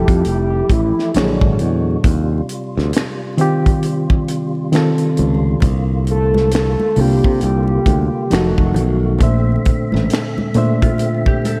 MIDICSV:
0, 0, Header, 1, 7, 480
1, 0, Start_track
1, 0, Tempo, 895522
1, 1092, Time_signature, 4, 2, 24, 8
1, 6218, End_track
2, 0, Start_track
2, 0, Title_t, "Hollow-body jazz guitar"
2, 0, Program_c, 0, 26
2, 5804, Note_on_c, 0, 65, 69
2, 6029, Note_off_c, 0, 65, 0
2, 6044, Note_on_c, 0, 67, 79
2, 6141, Note_off_c, 0, 67, 0
2, 6141, Note_on_c, 0, 69, 84
2, 6218, Note_off_c, 0, 69, 0
2, 6218, End_track
3, 0, Start_track
3, 0, Title_t, "Soft synth lead"
3, 0, Program_c, 1, 80
3, 0, Note_on_c, 1, 67, 104
3, 144, Note_off_c, 1, 67, 0
3, 150, Note_on_c, 1, 67, 103
3, 389, Note_on_c, 1, 64, 97
3, 397, Note_off_c, 1, 67, 0
3, 631, Note_on_c, 1, 62, 83
3, 639, Note_off_c, 1, 64, 0
3, 1006, Note_off_c, 1, 62, 0
3, 3274, Note_on_c, 1, 69, 106
3, 3487, Note_off_c, 1, 69, 0
3, 3516, Note_on_c, 1, 69, 113
3, 3753, Note_on_c, 1, 67, 93
3, 3761, Note_off_c, 1, 69, 0
3, 3983, Note_off_c, 1, 67, 0
3, 3993, Note_on_c, 1, 67, 112
3, 4472, Note_on_c, 1, 66, 87
3, 4481, Note_off_c, 1, 67, 0
3, 4847, Note_off_c, 1, 66, 0
3, 6218, End_track
4, 0, Start_track
4, 0, Title_t, "Reed electric piano"
4, 0, Program_c, 2, 4
4, 0, Control_c, 2, 64, 127
4, 0, Note_on_c, 2, 53, 64
4, 0, Note_on_c, 2, 64, 65
4, 0, Note_on_c, 2, 67, 66
4, 0, Note_on_c, 2, 69, 78
4, 249, Note_off_c, 2, 53, 0
4, 252, Note_off_c, 2, 64, 0
4, 256, Note_off_c, 2, 67, 0
4, 259, Note_off_c, 2, 69, 0
4, 613, Note_on_c, 2, 46, 62
4, 617, Note_on_c, 2, 54, 60
4, 619, Control_c, 2, 64, 0
4, 621, Note_on_c, 2, 73, 61
4, 627, Note_on_c, 2, 62, 58
4, 633, Note_on_c, 2, 68, 68
4, 726, Control_c, 2, 64, 127
4, 796, Note_off_c, 2, 46, 0
4, 798, Note_off_c, 2, 54, 0
4, 800, Note_off_c, 2, 73, 0
4, 803, Note_off_c, 2, 62, 0
4, 806, Note_off_c, 2, 68, 0
4, 1100, Control_c, 2, 64, 0
4, 1197, Control_c, 2, 64, 127
4, 1809, Note_on_c, 2, 51, 98
4, 1817, Note_on_c, 2, 60, 90
4, 1823, Note_on_c, 2, 65, 78
4, 1829, Note_on_c, 2, 67, 107
4, 1994, Note_off_c, 2, 51, 0
4, 1998, Note_off_c, 2, 60, 0
4, 2001, Note_off_c, 2, 65, 0
4, 2004, Note_off_c, 2, 67, 0
4, 2531, Note_on_c, 2, 51, 94
4, 2537, Note_on_c, 2, 60, 82
4, 2544, Note_on_c, 2, 65, 84
4, 2551, Note_on_c, 2, 69, 99
4, 2715, Note_off_c, 2, 51, 0
4, 2718, Note_off_c, 2, 60, 0
4, 2721, Note_off_c, 2, 65, 0
4, 2725, Note_off_c, 2, 69, 0
4, 3020, Control_c, 2, 64, 0
4, 3103, Control_c, 2, 64, 127
4, 3733, Note_on_c, 2, 48, 74
4, 3739, Note_on_c, 2, 58, 70
4, 3746, Note_on_c, 2, 62, 70
4, 3752, Note_on_c, 2, 65, 80
4, 4089, Note_off_c, 2, 48, 0
4, 4092, Note_off_c, 2, 58, 0
4, 4095, Note_off_c, 2, 62, 0
4, 4098, Note_off_c, 2, 65, 0
4, 4451, Note_on_c, 2, 53, 70
4, 4457, Note_on_c, 2, 63, 74
4, 4459, Control_c, 2, 64, 0
4, 4464, Note_on_c, 2, 66, 74
4, 4471, Note_on_c, 2, 69, 84
4, 4560, Control_c, 2, 64, 127
4, 4930, Note_on_c, 2, 46, 77
4, 4932, Note_off_c, 2, 53, 0
4, 4935, Note_off_c, 2, 63, 0
4, 4936, Note_on_c, 2, 57, 74
4, 4938, Note_off_c, 2, 66, 0
4, 4938, Control_c, 2, 64, 0
4, 4941, Note_on_c, 2, 62, 71
4, 4942, Note_off_c, 2, 69, 0
4, 4945, Note_on_c, 2, 72, 72
4, 4950, Note_on_c, 2, 76, 89
4, 5023, Control_c, 2, 64, 127
4, 5114, Note_off_c, 2, 46, 0
4, 5117, Note_off_c, 2, 57, 0
4, 5120, Note_off_c, 2, 62, 0
4, 5122, Note_off_c, 2, 72, 0
4, 5124, Note_off_c, 2, 76, 0
4, 5653, Note_on_c, 2, 46, 96
4, 5657, Note_on_c, 2, 57, 82
4, 5662, Note_on_c, 2, 62, 79
4, 5666, Note_on_c, 2, 72, 77
4, 5671, Note_on_c, 2, 76, 97
4, 6218, Note_off_c, 2, 46, 0
4, 6218, Note_off_c, 2, 57, 0
4, 6218, Note_off_c, 2, 62, 0
4, 6218, Note_off_c, 2, 72, 0
4, 6218, Note_off_c, 2, 76, 0
4, 6218, End_track
5, 0, Start_track
5, 0, Title_t, "Tonewheel organ"
5, 0, Program_c, 3, 16
5, 0, Note_on_c, 3, 57, 54
5, 0, Note_on_c, 3, 64, 56
5, 0, Note_on_c, 3, 67, 62
5, 598, Note_off_c, 3, 64, 0
5, 599, Note_off_c, 3, 67, 0
5, 600, Note_off_c, 3, 57, 0
5, 612, Note_on_c, 3, 50, 76
5, 614, Note_on_c, 3, 56, 61
5, 615, Note_on_c, 3, 66, 81
5, 1087, Note_off_c, 3, 50, 0
5, 1089, Note_off_c, 3, 56, 0
5, 1089, Note_off_c, 3, 66, 0
5, 1097, Note_on_c, 3, 48, 57
5, 1097, Note_on_c, 3, 65, 58
5, 1098, Note_on_c, 3, 55, 58
5, 2996, Note_off_c, 3, 48, 0
5, 2996, Note_off_c, 3, 55, 0
5, 3015, Note_on_c, 3, 58, 54
5, 3016, Note_on_c, 3, 50, 57
5, 4433, Note_off_c, 3, 65, 0
5, 4439, Note_off_c, 3, 58, 0
5, 4440, Note_off_c, 3, 50, 0
5, 4452, Note_on_c, 3, 57, 71
5, 4453, Note_on_c, 3, 51, 72
5, 4453, Note_on_c, 3, 66, 75
5, 4928, Note_off_c, 3, 51, 0
5, 4928, Note_off_c, 3, 66, 0
5, 4934, Note_on_c, 3, 50, 52
5, 4934, Note_on_c, 3, 60, 58
5, 4934, Note_on_c, 3, 76, 55
5, 6218, Note_off_c, 3, 50, 0
5, 6218, Note_off_c, 3, 57, 0
5, 6218, Note_off_c, 3, 60, 0
5, 6218, Note_off_c, 3, 76, 0
5, 6218, End_track
6, 0, Start_track
6, 0, Title_t, "Fingered electric bass"
6, 0, Program_c, 4, 33
6, 48, Note_on_c, 4, 41, 98
6, 119, Note_off_c, 4, 41, 0
6, 142, Note_on_c, 4, 29, 96
6, 328, Note_off_c, 4, 29, 0
6, 377, Note_on_c, 4, 33, 82
6, 490, Note_off_c, 4, 33, 0
6, 621, Note_on_c, 4, 34, 110
6, 733, Note_off_c, 4, 34, 0
6, 762, Note_on_c, 4, 32, 84
6, 836, Note_off_c, 4, 32, 0
6, 863, Note_on_c, 4, 40, 85
6, 1049, Note_off_c, 4, 40, 0
6, 1099, Note_on_c, 4, 39, 102
6, 1286, Note_off_c, 4, 39, 0
6, 1487, Note_on_c, 4, 38, 92
6, 1559, Note_off_c, 4, 38, 0
6, 2783, Note_on_c, 4, 37, 89
6, 2969, Note_off_c, 4, 37, 0
6, 3018, Note_on_c, 4, 36, 110
6, 3618, Note_off_c, 4, 36, 0
6, 3742, Note_on_c, 4, 36, 92
6, 3853, Note_off_c, 4, 36, 0
6, 3888, Note_on_c, 4, 48, 97
6, 3959, Note_off_c, 4, 48, 0
6, 3981, Note_on_c, 4, 36, 101
6, 4168, Note_off_c, 4, 36, 0
6, 4216, Note_on_c, 4, 38, 84
6, 4329, Note_off_c, 4, 38, 0
6, 4461, Note_on_c, 4, 29, 108
6, 4572, Note_off_c, 4, 29, 0
6, 4603, Note_on_c, 4, 29, 92
6, 4703, Note_off_c, 4, 29, 0
6, 4703, Note_on_c, 4, 35, 81
6, 4939, Note_off_c, 4, 35, 0
6, 4939, Note_on_c, 4, 34, 121
6, 5127, Note_off_c, 4, 34, 0
6, 5326, Note_on_c, 4, 33, 87
6, 5398, Note_off_c, 4, 33, 0
6, 6218, End_track
7, 0, Start_track
7, 0, Title_t, "Drums"
7, 43, Note_on_c, 9, 36, 96
7, 45, Note_on_c, 9, 42, 57
7, 97, Note_off_c, 9, 36, 0
7, 99, Note_off_c, 9, 42, 0
7, 132, Note_on_c, 9, 42, 60
7, 186, Note_off_c, 9, 42, 0
7, 372, Note_on_c, 9, 36, 93
7, 375, Note_on_c, 9, 42, 81
7, 426, Note_off_c, 9, 36, 0
7, 429, Note_off_c, 9, 42, 0
7, 531, Note_on_c, 9, 38, 34
7, 584, Note_off_c, 9, 38, 0
7, 612, Note_on_c, 9, 42, 80
7, 627, Note_on_c, 9, 38, 110
7, 633, Note_on_c, 9, 26, 87
7, 666, Note_off_c, 9, 42, 0
7, 680, Note_off_c, 9, 38, 0
7, 686, Note_off_c, 9, 26, 0
7, 758, Note_on_c, 9, 36, 88
7, 812, Note_off_c, 9, 36, 0
7, 852, Note_on_c, 9, 42, 53
7, 905, Note_off_c, 9, 42, 0
7, 1092, Note_on_c, 9, 42, 83
7, 1094, Note_on_c, 9, 36, 108
7, 1146, Note_off_c, 9, 42, 0
7, 1148, Note_off_c, 9, 36, 0
7, 1334, Note_on_c, 9, 42, 69
7, 1388, Note_off_c, 9, 42, 0
7, 1494, Note_on_c, 9, 38, 36
7, 1547, Note_off_c, 9, 38, 0
7, 1570, Note_on_c, 9, 42, 103
7, 1590, Note_on_c, 9, 38, 127
7, 1596, Note_on_c, 9, 26, 98
7, 1623, Note_off_c, 9, 42, 0
7, 1643, Note_off_c, 9, 38, 0
7, 1649, Note_off_c, 9, 26, 0
7, 1812, Note_on_c, 9, 42, 78
7, 1865, Note_off_c, 9, 42, 0
7, 1963, Note_on_c, 9, 36, 96
7, 1966, Note_on_c, 9, 42, 56
7, 2017, Note_off_c, 9, 36, 0
7, 2019, Note_off_c, 9, 42, 0
7, 2051, Note_on_c, 9, 42, 67
7, 2104, Note_off_c, 9, 42, 0
7, 2197, Note_on_c, 9, 36, 86
7, 2250, Note_off_c, 9, 36, 0
7, 2295, Note_on_c, 9, 42, 80
7, 2348, Note_off_c, 9, 42, 0
7, 2532, Note_on_c, 9, 42, 72
7, 2546, Note_on_c, 9, 38, 94
7, 2552, Note_on_c, 9, 26, 81
7, 2585, Note_off_c, 9, 42, 0
7, 2600, Note_off_c, 9, 38, 0
7, 2606, Note_off_c, 9, 26, 0
7, 2669, Note_on_c, 9, 42, 44
7, 2722, Note_off_c, 9, 42, 0
7, 2771, Note_on_c, 9, 42, 56
7, 2825, Note_off_c, 9, 42, 0
7, 3003, Note_on_c, 9, 64, 61
7, 3011, Note_on_c, 9, 42, 90
7, 3013, Note_on_c, 9, 36, 114
7, 3057, Note_off_c, 9, 64, 0
7, 3064, Note_off_c, 9, 42, 0
7, 3067, Note_off_c, 9, 36, 0
7, 3252, Note_on_c, 9, 42, 59
7, 3306, Note_off_c, 9, 42, 0
7, 3399, Note_on_c, 9, 63, 76
7, 3414, Note_on_c, 9, 38, 36
7, 3453, Note_off_c, 9, 63, 0
7, 3468, Note_off_c, 9, 38, 0
7, 3491, Note_on_c, 9, 42, 101
7, 3491, Note_on_c, 9, 62, 29
7, 3511, Note_on_c, 9, 38, 114
7, 3517, Note_on_c, 9, 26, 95
7, 3544, Note_off_c, 9, 62, 0
7, 3545, Note_off_c, 9, 42, 0
7, 3564, Note_off_c, 9, 38, 0
7, 3570, Note_off_c, 9, 26, 0
7, 3643, Note_on_c, 9, 62, 30
7, 3643, Note_on_c, 9, 63, 68
7, 3696, Note_off_c, 9, 62, 0
7, 3696, Note_off_c, 9, 63, 0
7, 3731, Note_on_c, 9, 46, 53
7, 3735, Note_on_c, 9, 63, 61
7, 3735, Note_on_c, 9, 64, 61
7, 3784, Note_off_c, 9, 46, 0
7, 3789, Note_off_c, 9, 63, 0
7, 3789, Note_off_c, 9, 64, 0
7, 3883, Note_on_c, 9, 36, 99
7, 3936, Note_off_c, 9, 36, 0
7, 3968, Note_on_c, 9, 62, 30
7, 3971, Note_on_c, 9, 42, 65
7, 4022, Note_off_c, 9, 62, 0
7, 4024, Note_off_c, 9, 42, 0
7, 4114, Note_on_c, 9, 62, 32
7, 4167, Note_off_c, 9, 62, 0
7, 4212, Note_on_c, 9, 36, 103
7, 4215, Note_on_c, 9, 42, 72
7, 4216, Note_on_c, 9, 63, 67
7, 4266, Note_off_c, 9, 36, 0
7, 4269, Note_off_c, 9, 42, 0
7, 4270, Note_off_c, 9, 63, 0
7, 4453, Note_on_c, 9, 42, 80
7, 4467, Note_on_c, 9, 38, 108
7, 4473, Note_on_c, 9, 26, 82
7, 4506, Note_off_c, 9, 42, 0
7, 4521, Note_off_c, 9, 38, 0
7, 4527, Note_off_c, 9, 26, 0
7, 4599, Note_on_c, 9, 36, 78
7, 4652, Note_off_c, 9, 36, 0
7, 4686, Note_on_c, 9, 64, 70
7, 4695, Note_on_c, 9, 42, 58
7, 4740, Note_off_c, 9, 64, 0
7, 4748, Note_off_c, 9, 42, 0
7, 4923, Note_on_c, 9, 64, 66
7, 4933, Note_on_c, 9, 42, 84
7, 4934, Note_on_c, 9, 36, 99
7, 4977, Note_off_c, 9, 64, 0
7, 4987, Note_off_c, 9, 42, 0
7, 4988, Note_off_c, 9, 36, 0
7, 5173, Note_on_c, 9, 42, 60
7, 5178, Note_on_c, 9, 36, 96
7, 5227, Note_off_c, 9, 42, 0
7, 5232, Note_off_c, 9, 36, 0
7, 5317, Note_on_c, 9, 63, 72
7, 5336, Note_on_c, 9, 38, 32
7, 5371, Note_off_c, 9, 63, 0
7, 5389, Note_off_c, 9, 38, 0
7, 5412, Note_on_c, 9, 42, 92
7, 5432, Note_on_c, 9, 38, 127
7, 5438, Note_on_c, 9, 26, 100
7, 5466, Note_off_c, 9, 42, 0
7, 5486, Note_off_c, 9, 38, 0
7, 5492, Note_off_c, 9, 26, 0
7, 5563, Note_on_c, 9, 62, 29
7, 5563, Note_on_c, 9, 63, 68
7, 5616, Note_off_c, 9, 62, 0
7, 5616, Note_off_c, 9, 63, 0
7, 5650, Note_on_c, 9, 42, 70
7, 5655, Note_on_c, 9, 63, 58
7, 5655, Note_on_c, 9, 64, 59
7, 5704, Note_off_c, 9, 42, 0
7, 5709, Note_off_c, 9, 63, 0
7, 5709, Note_off_c, 9, 64, 0
7, 5802, Note_on_c, 9, 36, 92
7, 5804, Note_on_c, 9, 42, 57
7, 5855, Note_off_c, 9, 36, 0
7, 5858, Note_off_c, 9, 42, 0
7, 5886, Note_on_c, 9, 62, 31
7, 5891, Note_on_c, 9, 42, 67
7, 5940, Note_off_c, 9, 62, 0
7, 5945, Note_off_c, 9, 42, 0
7, 6036, Note_on_c, 9, 36, 82
7, 6090, Note_off_c, 9, 36, 0
7, 6135, Note_on_c, 9, 63, 67
7, 6137, Note_on_c, 9, 42, 85
7, 6189, Note_off_c, 9, 63, 0
7, 6190, Note_off_c, 9, 42, 0
7, 6218, End_track
0, 0, End_of_file